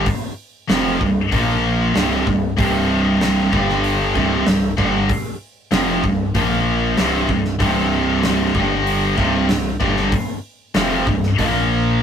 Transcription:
0.06 kick, open hi-hat
0.68 picked electric bass F1, distorted electric guitar F2 C3 F3, snare, open hi-hat
1.00 picked electric bass C1, distorted electric guitar C2 G2, kick
1.32 picked electric bass A#1, distorted electric guitar A#2 F3 A#3, kick, open hi-hat
1.94 picked electric bass C1, distorted electric guitar C2 G2 C3, snare, open hi-hat
2.26 picked electric bass C1, distorted electric guitar C2 G2, kick
2.57 picked electric bass C1, distorted electric guitar C2 G2 C3, kick, open hi-hat
3.21 snare, open hi-hat
3.51 picked electric bass G1, distorted electric guitar G2 D3 G3, kick
3.69 snare
3.84 open hi-hat
4.15 picked electric bass C1, distorted electric guitar C2 G2 C3, kick
4.46 picked electric bass C1, distorted electric guitar C2 G2, snare, open hi-hat
4.77 picked electric bass G1, distorted electric guitar G2 D3 G3, kick
5.09 kick, open hi-hat
5.71 picked electric bass F1, distorted electric guitar F2 C3 F3, snare, open hi-hat
6.03 picked electric bass C1, distorted electric guitar C2 G2, kick
6.35 picked electric bass A#1, distorted electric guitar A#2 F3 A#3, kick, open hi-hat
6.97 picked electric bass C1, distorted electric guitar C2 G2 C3, snare, open hi-hat
7.29 picked electric bass C1, distorted electric guitar C2 G2, kick
7.45 snare
7.59 picked electric bass C1, distorted electric guitar C2 G2 C3, kick, open hi-hat
8.23 snare, open hi-hat
8.53 picked electric bass G1, distorted electric guitar G2 D3 G3, kick
8.87 open hi-hat
9.16 picked electric bass C1, distorted electric guitar C2 G2 C3, kick
9.48 picked electric bass C1, distorted electric guitar C2 G2, snare, open hi-hat
9.80 picked electric bass G1, distorted electric guitar G2 D3 G3, kick
9.96 snare
10.12 kick, open hi-hat
10.74 picked electric bass F1, distorted electric guitar F2 C3 F3, snare, open hi-hat
11.06 picked electric bass C1, distorted electric guitar C2 G2, kick
11.23 snare
11.38 picked electric bass A#1, distorted electric guitar A#2 F3 A#3, kick, open hi-hat

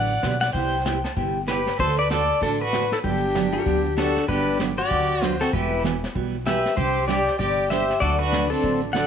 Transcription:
Already playing: upright bass A1, steel-string acoustic guitar D3 F#3 B3 D4 G4, fiddle D5, pedal steel guitar F#5
0.22 upright bass B1, steel-string acoustic guitar D3 F#3 B3 D4 G4, snare, hi-hat pedal
0.41 fiddle D5, pedal steel guitar F#5, snare
0.53 upright bass C2, steel-string acoustic guitar C3 G3 B3 E4 G4, fiddle C5, pedal steel guitar G5, brush sweep, kick
0.85 steel-string acoustic guitar C3 G3 B3 E4 G4, electric slide guitar G5, snare, hi-hat pedal
1.04 electric slide guitar A5, snare
1.16 upright bass G1, steel-string acoustic guitar C3 G3 B3 E4 G4, electric slide guitar G5, brush sweep, kick
1.47 steel-string acoustic guitar C3 G3 B3 E4 G4, fiddle G4, pedal steel guitar B4, snare, hi-hat pedal
1.67 snare
1.78 upright bass D2, steel-string acoustic guitar D3 A3 C4 F#4 A4, fiddle A4, pedal steel guitar C5, brush sweep, kick
1.98 fiddle B4, pedal steel guitar D5
2.10 steel-string acoustic guitar D3 A3 C4 F#4 A4, fiddle A4, snare, hi-hat pedal
2.41 upright bass A1, steel-string acoustic guitar D3 A3 C4 F#4 A4, fiddle D4, pedal steel guitar A4, brush sweep, kick
2.61 fiddle F#4, pedal steel guitar B4
2.73 steel-string acoustic guitar D3 A3 C4 F#4 A4, snare, hi-hat pedal
2.92 fiddle E4, pedal steel guitar A4, snare
3.03 upright bass G1, steel-string acoustic guitar D3 F#3 B3 D4 G4, fiddle D4, pedal steel guitar G4, brush sweep, kick
3.35 steel-string acoustic guitar D3 F#3 B3 D4 G4, snare, hi-hat pedal
3.53 electric slide guitar F#4 A#4
3.65 upright bass D2, steel-string acoustic guitar D3 F#3 B3 D4 G4, electric slide guitar D4 G4, brush sweep, kick
3.85 electric slide guitar G4
3.96 steel-string acoustic guitar D3 F#3 B3 D4 G4, pedal steel guitar D4 A4, fiddle F#4, snare, hi-hat pedal
4.17 snare
4.28 upright bass G1, steel-string acoustic guitar D3 F#3 B3 D4 G4, pedal steel guitar D4 B4, fiddle G4, brush sweep, kick
4.59 steel-string acoustic guitar D3 F#3 B3 D4 G4, snare, hi-hat pedal
4.78 pedal steel guitar F#4 D5, fiddle G4
4.90 upright bass D2, steel-string acoustic guitar D3 F#3 B3 D4 G4, brush sweep, kick
5.21 steel-string acoustic guitar D3 F#3 B3 D4 G4, fiddle F4, snare, hi-hat pedal
5.27 pedal steel guitar C5
5.41 pedal steel guitar C4 A4, fiddle F#4, snare
5.52 upright bass E1, steel-string acoustic guitar E3 G3 B3 F#4, pedal steel guitar E4 B4, fiddle G4, brush sweep, kick
5.83 steel-string acoustic guitar E3 G3 B3 F#4, snare, hi-hat pedal
6.04 snare
6.15 upright bass B1, steel-string acoustic guitar E3 G3 B3 F#4, brush sweep, kick
6.45 steel-string acoustic guitar E3 G3 B3 F#4, pedal steel guitar G4 E5, fiddle B4, snare, hi-hat pedal
6.66 snare
6.76 upright bass C2, steel-string acoustic guitar C3 G3 C4 D4 G4, fiddle G4, pedal steel guitar G4 C5, brush sweep, kick
7.07 steel-string acoustic guitar C3 G3 C4 D4 G4, fiddle G4, pedal steel guitar G4 D5, snare, hi-hat pedal
7.28 snare
7.39 upright bass G1, steel-string acoustic guitar C3 G3 C4 D4 G4, fiddle G4, pedal steel guitar G4 D5, brush sweep, kick
7.70 steel-string acoustic guitar C3 G3 C4 D4 G4, pedal steel guitar G4 E5, fiddle C5, snare, hi-hat pedal
7.90 snare
8.00 upright bass D2, steel-string acoustic guitar D3 F#3 A3 D4 F#4, pedal steel guitar F#4 D5, fiddle A4, brush sweep, kick
8.19 pedal steel guitar D4 B4, fiddle F#4
8.32 steel-string acoustic guitar D3 F#3 A3 D4 F#4, snare, hi-hat pedal
8.50 pedal steel guitar C4 A4, fiddle D4
8.62 upright bass A1, steel-string acoustic guitar D3 F#3 A3 D4 F#4, brush sweep, kick
8.93 steel-string acoustic guitar D3 F#3 A3 D4 F#4, pedal steel guitar A4 F#5, fiddle D5, snare, hi-hat pedal

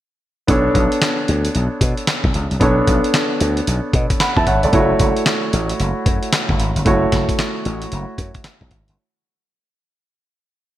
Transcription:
0.47 slap bass B1, grand piano B3 D4 A4 C#5, kick, closed hi-hat
0.75 slap bass B1, kick, closed hi-hat
0.92 closed hi-hat
1.02 snare, clap, closed hi-hat
1.28 slap bass D2, closed hi-hat
1.45 closed hi-hat
1.55 slap bass B1, closed hi-hat
1.81 slap bass B2, kick, closed hi-hat
1.97 closed hi-hat
2.07 snare, clap, closed hi-hat
2.24 slap bass B1, kick
2.34 slap bass C#2, closed hi-hat
2.51 slap bass C2, closed hi-hat
2.60 slap bass B1, grand piano B3 D4 A4 C#5, kick, closed hi-hat
2.87 slap bass B1, kick, closed hi-hat
3.04 closed hi-hat
3.14 snare, clap, closed hi-hat
3.40 slap bass D2, closed hi-hat
3.57 closed hi-hat
3.67 slap bass B1, closed hi-hat
3.93 slap bass B2, kick, closed hi-hat
4.10 kick, closed hi-hat
4.20 grand piano F#5 B5, snare, clap, closed hi-hat
4.37 slap bass E2, grand piano E5 A5, kick
4.47 slap bass G#1, grand piano C#5 F#5, kick, closed hi-hat
4.63 slap bass G1, grand piano A4 D5, closed hi-hat
4.72 slap bass F#1, grand piano A3 E4 F#4 C#5, kick, closed hi-hat
4.99 slap bass F#1, kick, closed hi-hat
5.17 closed hi-hat
5.26 snare, clap, closed hi-hat
5.53 slap bass A1, closed hi-hat
5.69 closed hi-hat
5.80 slap bass F#1, closed hi-hat
6.06 slap bass F#2, kick, closed hi-hat
6.23 closed hi-hat
6.33 snare, clap, closed hi-hat
6.49 slap bass F#1, kick
6.60 slap bass G#1, closed hi-hat
6.76 slap bass G1, closed hi-hat
6.85 slap bass F#1, grand piano A3 E4 F#4 C#5, kick, closed hi-hat
7.12 slap bass F#1, kick, snare, closed hi-hat
7.29 kick, closed hi-hat
7.39 snare, clap, closed hi-hat
7.65 slap bass A1, closed hi-hat
7.82 closed hi-hat
7.92 slap bass F#1, closed hi-hat
8.18 slap bass F#2, kick, closed hi-hat
8.35 kick, closed hi-hat
8.44 snare, clap, closed hi-hat
8.61 slap bass B1, kick
8.71 slap bass G#1, kick, closed hi-hat
8.88 slap bass G1, closed hi-hat

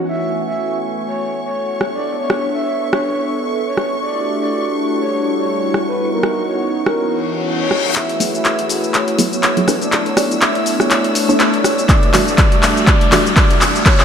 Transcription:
Already playing: ambient pad E3 C#4 C#5 F#5, analog synth pad E4 F#4
0.08 analog synth pad A3 B4 G#5, ambient pad B3, soft synth lead E5, violin section C#6
0.45 ambient pad A4, soft synth lead E5
0.87 ambient pad E5
1.07 soft synth lead C#5
1.46 soft synth lead C#5
1.81 analog synth pad B3 D4 A4 C#5, ambient pad D4, cross-stick
1.95 soft synth lead D5
2.15 ambient pad B4
2.19 soft synth lead C#5
2.30 cross-stick
2.55 soft synth lead E5
2.81 ambient pad C#6
2.93 soft synth lead C#5, cross-stick
3.67 soft synth lead C#5
3.77 cross-stick
4.02 analog synth pad A3 D4 E4 F#4 G4, soft synth lead D5
4.41 soft synth lead D5
4.57 ambient pad G3 F#5
5.01 soft synth lead C#5
5.39 soft synth lead C#5
5.74 cross-stick
5.88 soft synth lead B4
5.99 analog synth pad B3 D#4 C#5, ambient pad C#4
6.13 soft synth lead A#4
6.18 ambient pad D#5
6.23 cross-stick
6.44 ambient pad E3
6.48 soft synth lead C#5
6.72 ambient pad C#5
6.86 soft synth lead A#4, cross-stick
6.97 reverse cymbal
7.61 soft synth lead C#5
7.71 cross-stick
7.95 analog synth pad A3 E4 F#4 G#4 B4, ambient pad B3, soft synth lead E5, violin section E6, clap, closed hi-hat, riser, shaker
8.09 closed hi-hat
8.20 synth stab F#3 A3 B3 E4 G#4, open hi-hat, shaker
8.34 soft synth lead E5, shaker
8.45 ambient pad A3, clap, closed hi-hat, shaker
8.59 closed hi-hat
8.69 open hi-hat, shaker
8.74 ambient pad E5
8.84 shaker
8.94 soft synth lead C#5, clap, closed hi-hat, shaker
9.08 closed hi-hat
9.18 synth stab F#3 A3 B3 E4 G#4, open hi-hat, shaker
9.32 soft synth lead C#5, shaker
9.43 clap, closed hi-hat, shaker
9.57 synth stab F#3 A3 B3 E4 G#4, closed hi-hat
9.68 synth stab B3 D4 E4 A4 B4, analog synth pad B3 D4 A4 C#5, ambient pad D4, cross-stick, open hi-hat, shaker
9.82 soft synth lead D5, closed hi-hat, shaker
9.92 clap, closed hi-hat, shaker
10.00 ambient pad C#6
10.06 soft synth lead C#5, closed hi-hat
10.17 synth stab B3 D4 E4 A4 D5, cross-stick, open hi-hat, shaker
10.31 shaker
10.41 soft synth lead E5, clap, closed hi-hat, shaker
10.55 closed hi-hat
10.66 ambient pad B4, open hi-hat, shaker
10.80 soft synth lead C#5, cross-stick, shaker
10.91 clap, closed hi-hat, shaker
11.04 closed hi-hat
11.15 open hi-hat, shaker
11.29 synth stab B3 D4 E4 A4 C#5, shaker
11.40 clap, closed hi-hat, shaker
11.54 soft synth lead C#5, closed hi-hat
11.64 cross-stick, open hi-hat, shaker
11.78 closed hi-hat, shaker
11.89 analog synth pad G3 F#4 E5, soft synth lead D5, kick, clap, closed hi-hat, shaker
12.03 closed hi-hat
12.13 synth stab E3 G3 A3 D4 F#4, clap, open hi-hat, shaker
12.28 soft synth lead D5, shaker
12.38 ambient pad G3, kick, clap, closed hi-hat, shaker
12.52 closed hi-hat
12.63 clap, open hi-hat, shaker
12.77 ambient pad F#5, shaker
12.87 soft synth lead D5, kick, clap, closed hi-hat, shaker
13.01 closed hi-hat
13.12 synth stab E3 G3 A3 D4 F#4, clap, open hi-hat, shaker
13.26 soft synth lead D5, shaker
13.37 kick, clap, closed hi-hat, shaker
13.50 closed hi-hat
13.61 clap, open hi-hat, shaker
13.75 closed hi-hat, shaker
13.85 analog synth pad B3 E4 C#5 E5, ambient pad C#4, soft synth lead C#5, kick, clap, closed hi-hat, shaker
14.00 ambient pad E4, clap, closed hi-hat

